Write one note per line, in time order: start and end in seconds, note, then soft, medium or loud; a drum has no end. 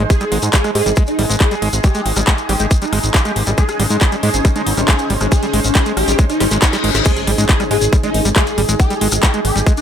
0.00 7.04 G#3 medium
0.00 9.81 D#4 medium
0.00 9.81 G#4 medium
0.00 0.12 C5 medium
0.00 1.97 D#5 medium
0.10 0.32 G#4 loud
0.10 3.60 G#4 medium
0.10 kick loud
0.10 closed hi-hat medium
0.10 shekere medium
0.21 0.25 G3 medium
0.21 cross-stick soft
0.21 closed hi-hat soft
0.21 shekere soft
0.32 0.38 G#1 loud
0.32 0.38 G#3 medium
0.32 open hi-hat loud
0.42 0.49 G#2 medium
0.42 closed hi-hat soft
0.42 shekere medium
0.53 0.57 G3 medium
0.53 0.64 G#4 medium
0.53 kick loud
0.53 clap loud
0.53 closed hi-hat medium
0.53 shekere medium
0.64 0.71 G#3 medium
0.64 cross-stick medium
0.64 closed hi-hat soft
0.64 shekere soft
0.75 0.82 G#2 medium
0.75 0.91 G#4 loud
0.75 open hi-hat loud
0.86 0.93 G#1 medium
0.86 0.90 G3 medium
0.86 closed hi-hat soft
0.86 shekere medium
0.96 1.03 G#3 medium
0.96 kick loud
0.96 cross-stick soft
0.96 closed hi-hat medium
0.96 shekere medium
1.07 1.24 D#4 loud
1.07 closed hi-hat soft
1.07 shekere soft
1.19 1.25 G#1 loud
1.19 1.23 G3 medium
1.19 open hi-hat loud
1.30 1.36 G#1 medium
1.30 1.36 G#3 medium
1.30 closed hi-hat soft
1.30 shekere medium
1.40 1.62 G#4 medium
1.40 kick loud
1.40 cross-stick medium
1.40 clap loud
1.40 closed hi-hat medium
1.40 shekere medium
1.51 1.55 G3 medium
1.51 closed hi-hat soft
1.51 shekere soft
1.62 1.69 G#1 medium
1.62 1.69 G#3 medium
1.62 open hi-hat loud
1.73 1.80 G#1 medium
1.73 cross-stick soft
1.73 closed hi-hat soft
1.73 shekere medium
1.84 1.88 G3 medium
1.84 8.47 C#4 medium
1.84 2.05 G4 loud
1.84 kick loud
1.84 closed hi-hat medium
1.84 shekere medium
1.94 2.01 G#3 medium
1.94 closed hi-hat soft
1.94 shekere soft
2.06 2.12 G#1 medium
2.06 open hi-hat loud
2.16 2.23 G#1 medium
2.16 2.20 G3 medium
2.16 cross-stick medium
2.16 closed hi-hat soft
2.16 shekere medium
2.27 2.34 G#3 medium
2.27 2.38 G4 medium
2.27 kick loud
2.27 clap loud
2.27 closed hi-hat medium
2.27 shekere medium
2.38 closed hi-hat soft
2.38 shekere soft
2.49 2.56 G#1 loud
2.49 2.53 G3 medium
2.49 2.65 G4 medium
2.49 cross-stick soft
2.49 open hi-hat loud
2.60 2.67 G#1 medium
2.60 2.66 G#3 medium
2.60 closed hi-hat soft
2.60 shekere medium
2.71 kick loud
2.71 closed hi-hat medium
2.71 shekere medium
2.82 2.86 G3 medium
2.82 2.98 D#4 medium
2.82 closed hi-hat soft
2.82 shekere soft
2.93 2.99 G#1 loud
2.93 2.99 G#3 medium
2.93 cross-stick medium
2.93 open hi-hat loud
3.03 3.10 G#1 medium
3.03 closed hi-hat soft
3.03 shekere medium
3.14 3.18 G3 medium
3.14 3.36 G4 loud
3.14 kick loud
3.14 clap loud
3.14 closed hi-hat medium
3.14 shekere medium
3.25 3.32 G#3 medium
3.25 cross-stick soft
3.25 closed hi-hat soft
3.25 shekere soft
3.36 3.43 G#1 loud
3.36 open hi-hat loud
3.47 3.54 G#1 medium
3.47 3.51 G3 medium
3.47 closed hi-hat soft
3.47 shekere medium
3.58 3.64 G#3 medium
3.58 3.79 G#4 loud
3.58 7.08 C5 medium
3.58 kick loud
3.58 closed hi-hat medium
3.58 shekere medium
3.69 cross-stick medium
3.69 closed hi-hat soft
3.69 shekere soft
3.80 3.86 G#1 medium
3.80 3.83 G3 medium
3.80 open hi-hat loud
3.90 3.97 G#2 medium
3.90 3.97 G#3 medium
3.90 closed hi-hat soft
3.90 shekere medium
4.01 4.12 G#4 medium
4.01 kick loud
4.01 cross-stick soft
4.01 clap loud
4.01 closed hi-hat medium
4.01 shekere medium
4.12 4.16 G3 medium
4.12 closed hi-hat soft
4.12 shekere soft
4.23 4.30 G#2 loud
4.23 4.30 G#3 medium
4.23 4.39 G#4 loud
4.23 open hi-hat loud
4.34 4.41 G#1 medium
4.34 closed hi-hat soft
4.34 shekere medium
4.45 4.49 G3 medium
4.45 kick loud
4.45 cross-stick medium
4.45 closed hi-hat medium
4.45 shekere medium
4.56 4.62 G#3 medium
4.56 4.72 D#4 loud
4.56 closed hi-hat soft
4.56 shekere soft
4.67 4.73 G#1 loud
4.67 open hi-hat loud
4.77 4.84 G#1 medium
4.77 4.81 G3 medium
4.77 cross-stick soft
4.77 closed hi-hat soft
4.77 shekere medium
4.88 4.95 G#3 medium
4.88 5.10 G#4 medium
4.88 kick loud
4.88 clap loud
4.88 closed hi-hat medium
4.88 shekere medium
4.99 closed hi-hat soft
4.99 shekere soft
5.10 5.17 G#1 loud
5.10 5.14 G3 medium
5.10 open hi-hat loud
5.21 5.28 G#1 medium
5.21 5.27 G#3 medium
5.21 cross-stick medium
5.21 closed hi-hat soft
5.21 shekere medium
5.32 5.53 G#4 loud
5.32 kick loud
5.32 closed hi-hat medium
5.32 shekere medium
5.43 5.47 G3 medium
5.43 closed hi-hat soft
5.43 shekere soft
5.53 5.60 G#1 loud
5.53 5.60 G#3 medium
5.53 cross-stick soft
5.53 open hi-hat loud
5.64 5.71 G#1 medium
5.64 closed hi-hat soft
5.64 shekere medium
5.75 5.79 G3 medium
5.75 5.86 G#4 medium
5.75 kick loud
5.75 clap loud
5.75 closed hi-hat medium
5.75 shekere medium
5.86 5.93 G#3 medium
5.86 closed hi-hat soft
5.86 shekere soft
5.97 6.04 G#1 loud
5.97 6.13 G4 loud
5.97 cross-stick medium
5.97 open hi-hat loud
6.08 6.15 G#1 medium
6.08 6.12 G3 medium
6.08 closed hi-hat soft
6.08 shekere medium
6.18 6.25 G#3 medium
6.18 kick loud
6.18 closed hi-hat medium
6.18 reverse cymbal medium
6.18 shekere medium
6.30 6.46 D#4 medium
6.30 cross-stick soft
6.30 closed hi-hat soft
6.30 shekere soft
6.40 6.47 G#1 medium
6.40 6.44 G3 medium
6.40 snare medium
6.40 open hi-hat loud
6.51 6.58 G#1 medium
6.51 6.58 G#3 medium
6.51 snare medium
6.51 closed hi-hat soft
6.51 shekere medium
6.62 6.84 D#4 medium
6.62 kick loud
6.62 snare medium
6.62 clap loud
6.62 closed hi-hat medium
6.62 shekere medium
6.73 6.77 G3 medium
6.73 snare medium
6.73 closed hi-hat soft
6.73 shekere soft
6.84 6.91 G#1 loud
6.84 6.90 G#3 medium
6.84 open hi-hat loud
6.95 7.02 G#1 medium
6.95 snare medium
6.95 closed hi-hat soft
6.95 shekere medium
7.05 9.81 G#3 medium
7.05 7.12 G#3 medium
7.05 7.27 G#4 loud
7.05 9.81 G#4 medium
7.05 kick loud
7.05 closed hi-hat medium
7.05 crash loud
7.05 impact medium
7.05 shekere medium
7.16 9.81 D#5 medium
7.16 cross-stick soft
7.16 closed hi-hat soft
7.16 shekere soft
7.27 7.34 G#1 medium
7.27 7.31 G3 medium
7.27 open hi-hat loud
7.38 7.45 G#2 medium
7.38 7.45 G#3 medium
7.38 closed hi-hat soft
7.38 shekere medium
7.49 7.60 G#4 medium
7.49 kick loud
7.49 clap loud
7.49 closed hi-hat medium
7.49 shekere medium
7.60 7.64 G3 medium
7.60 cross-stick medium
7.60 closed hi-hat soft
7.60 shekere soft
7.71 7.78 G#2 loud
7.71 7.77 G#3 medium
7.71 7.87 G#4 medium
7.71 open hi-hat loud
7.81 7.89 G#1 medium
7.81 closed hi-hat soft
7.81 shekere medium
7.93 7.97 G3 medium
7.93 kick loud
7.93 cross-stick soft
7.93 closed hi-hat medium
7.93 shekere medium
8.03 8.10 G#3 medium
8.03 8.20 D#4 loud
8.03 closed hi-hat soft
8.03 shekere soft
8.14 8.21 G#1 medium
8.14 open hi-hat loud
8.25 8.32 G#1 medium
8.25 8.29 G3 medium
8.25 closed hi-hat soft
8.25 shekere medium
8.36 8.43 G#3 medium
8.36 8.58 G#4 medium
8.36 kick loud
8.36 cross-stick medium
8.36 clap loud
8.36 closed hi-hat medium
8.36 shekere medium
8.47 closed hi-hat soft
8.47 shekere soft
8.58 8.65 G#1 loud
8.58 8.62 G3 medium
8.58 open hi-hat loud
8.69 8.75 G#1 medium
8.69 8.75 G#3 medium
8.69 cross-stick soft
8.69 closed hi-hat soft
8.69 shekere medium
8.80 9.01 G4 loud
8.80 kick loud
8.80 closed hi-hat medium
8.80 shekere medium
8.90 8.94 G3 medium
8.90 closed hi-hat soft
8.90 shekere soft
9.01 9.08 G#1 medium
9.01 9.08 G#3 medium
9.01 open hi-hat loud
9.12 9.19 G#1 medium
9.12 cross-stick medium
9.12 closed hi-hat soft
9.12 shekere medium
9.23 9.27 G3 medium
9.23 9.34 G4 medium
9.23 kick loud
9.23 clap loud
9.23 closed hi-hat medium
9.23 shekere medium
9.34 9.40 G#3 medium
9.34 closed hi-hat soft
9.34 shekere soft
9.45 9.52 G#1 loud
9.45 9.61 G4 loud
9.45 cross-stick soft
9.45 open hi-hat loud
9.56 9.62 G#1 medium
9.56 9.60 G3 medium
9.56 closed hi-hat soft
9.56 shekere medium
9.66 9.73 G#3 medium
9.66 kick loud
9.66 closed hi-hat medium
9.66 shekere medium
9.77 9.81 D#4 loud
9.77 closed hi-hat soft
9.77 shekere soft